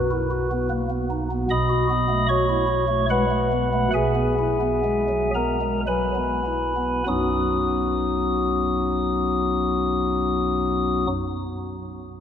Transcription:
Already playing: B1 B2 F#4 B4
0.11 E4
0.31 F#4
0.51 B3
0.70 A#3
0.90 B3
1.10 D#4
1.31 B3
1.50 B1 B2 D#5 B5 D#6
1.70 F#4
1.90 B3
2.09 A3
2.29 F#4 C#5 C#6
2.49 E4
2.67 F#4
2.88 A3
3.10 G#3 B4 F#5 B5
3.31 A3
3.52 B3
3.73 A3
3.94 B1 B2 G#4 E5 G#5
4.15 B3
4.39 E4
4.61 B3
4.84 G#3
5.09 F#3
5.35 B3 A#4 A#5
5.61 G#3
5.87 F#3 B4 G#5 B5
6.15 B3
6.46 E4
6.76 B3
7.07 B1 F#2 F#3 B3 D#4 F#4 D#6

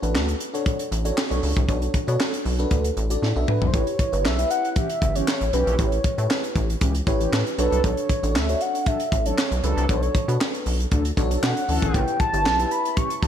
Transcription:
0.02 A1 D4 F#4 A4 B4, closed hi-hat
0.15 D2, snare, clap
0.29 closed hi-hat
0.40 closed hi-hat
0.53 D4 F#4 A4 C#5, closed hi-hat
0.66 kick, closed hi-hat
0.79 closed hi-hat
0.92 A1, closed hi-hat
1.05 D4 F#4 A4 C#5, closed hi-hat
1.18 snare, clap
1.30 B1 D4 F#4 A4 C#5, closed hi-hat
1.43 C#2, open hi-hat
1.57 C2, kick
1.68 B1 D4 F#4 A4 C#5, kick, closed hi-hat
1.82 closed hi-hat
1.94 kick, closed hi-hat
2.07 B2 D4 F#4 A4 C#5, closed hi-hat
2.20 snare, clap
2.34 closed hi-hat
2.45 B1, open hi-hat
2.59 D4 F#4 A4 B4, closed hi-hat
2.71 D2, kick, closed hi-hat
2.84 closed hi-hat
2.97 A1, closed hi-hat
3.10 D4 F#4 A4 D5, closed hi-hat
3.22 A2, snare
3.35 B1 D4 F#4 A4 E5
3.48 B4, mid tom
3.61 B1, floor tom
3.67 C5
3.73 A1 E4 G4 B4 C#5, kick, closed hi-hat
3.87 closed hi-hat
3.99 kick, closed hi-hat
4.12 G1 E4 G4 B4 C#5, closed hi-hat
4.25 B1 E5, snare, clap
4.38 E4 G4 B4 E5, closed hi-hat
4.50 F#5, closed hi-hat
4.65 closed hi-hat
4.70 F#5
4.76 E3 C#4 G4 E5, kick, closed hi-hat
4.90 closed hi-hat
5.02 G1, kick, closed hi-hat
5.15 E3 C#4 G4 C#5, closed hi-hat
5.28 snare, clap
5.41 A1, closed hi-hat
5.53 B1 E3 C#4 G4 B4, closed hi-hat
5.67 A#1, closed hi-hat
5.78 A1 E4 G4 B4 C#5, kick, closed hi-hat
5.92 closed hi-hat
6.04 kick, closed hi-hat
6.18 A2 E4 G4 B4 C#5, closed hi-hat
6.31 snare, clap
6.44 closed hi-hat
6.56 A1, kick, closed hi-hat
6.70 closed hi-hat
6.81 C#2 E3 C#4 G4, kick, closed hi-hat
6.95 closed hi-hat
7.07 A1 E4 G4 B4 C#5, kick, closed hi-hat
7.20 E3 C#4 G4, closed hi-hat
7.33 A2, snare, clap
7.47 closed hi-hat
7.58 B1 F#3 D4 F#4 A4 B4 C#5, closed hi-hat
7.72 C2, closed hi-hat
7.84 B1 C#5, kick, closed hi-hat
7.97 closed hi-hat
8.09 kick, closed hi-hat
8.23 A1 D4 F#4 A4 C#5, closed hi-hat
8.35 D2 E5, snare, clap
8.49 D4 F#4 A4 C#5, closed hi-hat
8.61 F#5, closed hi-hat
8.75 closed hi-hat
8.86 F#3 D4 A4 E5, kick, closed hi-hat
9.00 closed hi-hat
9.12 A1, kick, closed hi-hat
9.26 F#3 D4 A4 C#5, closed hi-hat
9.38 snare, clap
9.51 B1, closed hi-hat
9.63 C#2 F#3 D4 A4 B4, closed hi-hat
9.77 C2, closed hi-hat
9.89 B1 D4 F#4 A4 C#5, kick, closed hi-hat
10.03 closed hi-hat
10.15 kick, closed hi-hat
10.28 B2 D4 F#4 A4 B4, closed hi-hat
10.41 snare, clap
10.54 closed hi-hat
10.66 B1, open hi-hat
10.80 closed hi-hat
10.91 D2 F#3 D4 A4, kick, closed hi-hat
11.05 closed hi-hat
11.17 B1 D4 F#4 A4 C#5, kick, closed hi-hat
11.31 F#3 D4 A4, closed hi-hat
11.43 B2 F#5, snare, clap
11.57 closed hi-hat
11.68 D2 E3 C#4 A4, open hi-hat
11.82 A#1, kick, closed hi-hat
11.94 A1 E4 G4 B4 C#5 G5, kick, closed hi-hat
12.08 closed hi-hat
12.20 A5, kick, closed hi-hat
12.33 G1 E4 G4 B4 C#5, closed hi-hat
12.46 B1, snare, clap
12.59 E4 G4 B4 E5, closed hi-hat
12.71 B5, closed hi-hat
12.85 closed hi-hat
12.97 E3 C#4 G4 C#6, kick, closed hi-hat
13.10 closed hi-hat
13.22 G1 A5, kick, closed hi-hat

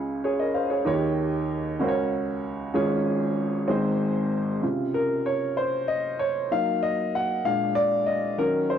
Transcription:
Already playing: C#2 C#3 C#4 F4 G#4 C#5
0.24 G#4 C#5
0.39 A#4 D#5
0.54 C5 F5
0.70 G#4 C#5
0.85 D#2 D#3 D#4 F4 A#4 C#5
0.92 G4
1.80 C#2 C#3 C#4 F#4 A#4 C5
1.88 C#5
2.74 G#1 G#2 C#4 F4 G#4 C#5
3.68 G#1 G#2 C4 D#4 G#4 C5
4.62 C3 C#3 F4
4.94 A#4
5.26 C#5
5.57 C5
5.88 D#5
6.19 C#5
6.51 F#3 A#3 D#4 F5
6.82 D#5
7.15 F#5
7.45 A#2 G#3 D4 F5
7.76 D5
8.07 D#5
8.38 D#3 F#3 C#4 A#4
8.70 C5

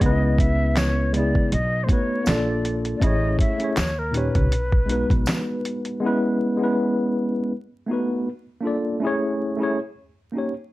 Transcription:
0.00 C#2 G#3 B3 C#4 D#5, kick, closed hi-hat
0.04 D#4 B4
0.11 E4
0.38 E5, kick, closed hi-hat
0.76 C#5, snare, clap, closed hi-hat, tambourine
1.13 C#3 G#3 B3 D5, closed hi-hat
1.18 E4 G#4
1.35 kick
1.52 B1 D#5, closed hi-hat
1.84 A3 C5
1.88 B3 D#4 F#4 C#5, kick, closed hi-hat
1.93 B4
2.24 A#1 A#3 D4 F4 D5, clap, closed hi-hat, tambourine
2.28 A4 D5, snare
2.65 closed hi-hat
2.85 closed hi-hat
2.96 A3 D5
3.01 A1 C#4 E4 G#4 D#5, kick, closed hi-hat
3.06 C#5
3.39 E5, kick, closed hi-hat
3.58 A3 C#4 E4, closed hi-hat
3.63 G#4 C#5
3.76 D#2 C#5, snare, clap, closed hi-hat, tambourine
3.99 A#4
4.11 A#2 C#4 D#4, closed hi-hat
4.15 G4 B4 C#5
4.35 C#2, kick, closed hi-hat
4.52 B1, closed hi-hat
4.72 kick
4.86 G#3 B3 D#4, closed hi-hat
4.91 F#4 B4
5.10 B1, kick, closed hi-hat
5.26 snare, clap, closed hi-hat, tambourine
5.65 closed hi-hat
5.85 closed hi-hat
6.00 G#3 B3 C#4
6.05 E4 B4
6.57 G#3 B3 C#4
6.62 E4 B4
7.86 A3 B3 D#4
7.91 F#4 B4
8.61 A#3 D4 F4
8.65 A4 D5
9.00 A3 C#4 E4
9.05 G#4 C#5
9.57 A3 C#4 E4
9.62 G#4 C#5
10.32 A#3 C#4 D#4
10.37 G4 C#5

